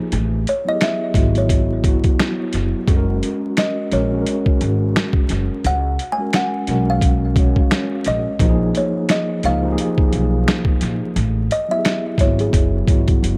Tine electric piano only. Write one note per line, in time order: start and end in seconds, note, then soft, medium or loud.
0.00 0.14 F3 medium
0.00 0.14 A#3 medium
0.00 0.14 D#4 medium
0.00 0.13 G4 medium
0.00 0.14 G#4 loud
0.65 1.12 F#3 medium
0.65 1.13 B3 medium
0.65 1.13 E4 medium
0.65 0.73 G4 medium
0.74 1.17 G#4 medium
1.15 1.81 F#3 medium
1.15 1.81 B3 medium
1.15 1.82 E4 medium
1.15 1.82 F#4 medium
1.85 2.83 F#3 medium
1.85 2.83 B3 medium
1.85 2.84 E4 medium
1.85 2.84 F#4 medium
2.87 3.85 G#3 medium
2.87 3.86 C#4 medium
2.87 3.87 F#4 medium
2.87 2.96 A4 medium
2.96 3.90 A#4 loud
3.92 4.10 G#3 medium
3.92 4.11 C#4 medium
3.92 4.11 F#4 medium
3.92 4.12 A#4 medium
4.12 5.40 G#3 medium
4.12 5.40 C#4 medium
4.12 5.41 F#4 medium
4.12 4.19 G#4 medium
4.22 5.45 A#4 medium
6.18 6.65 G#3 medium
6.18 6.65 C#4 medium
6.18 6.66 F#4 medium
6.18 6.66 A#4 medium
6.67 7.33 G#3 medium
6.67 7.33 C#4 medium
6.67 7.34 F#4 medium
6.67 7.34 A#4 medium
7.36 8.34 G#3 medium
7.36 8.35 C#4 medium
7.36 8.35 F#4 medium
7.36 8.36 C#5 medium
8.39 9.37 F3 loud
8.39 9.38 A#3 loud
8.39 9.39 D#4 loud
8.39 8.49 F#4 medium
8.49 9.42 G#4 loud
9.44 9.61 F3 medium
9.44 9.62 A#3 medium
9.44 9.63 D#4 medium
9.44 9.63 G#4 loud
9.63 10.91 F3 medium
9.63 10.92 A#3 medium
9.63 10.92 D#4 medium
9.63 9.70 G4 medium
9.73 10.96 G#4 medium
11.69 12.16 F#3 medium
11.69 12.16 B3 medium
11.69 12.17 E4 medium
11.69 11.76 G4 medium
11.79 12.21 G#4 medium
12.19 12.84 F#3 medium
12.19 12.85 B3 medium
12.19 12.85 E4 medium
12.19 12.86 F#4 medium
12.89 13.38 F#3 medium
12.89 13.38 B3 medium
12.89 13.38 E4 medium
12.89 13.38 F#4 medium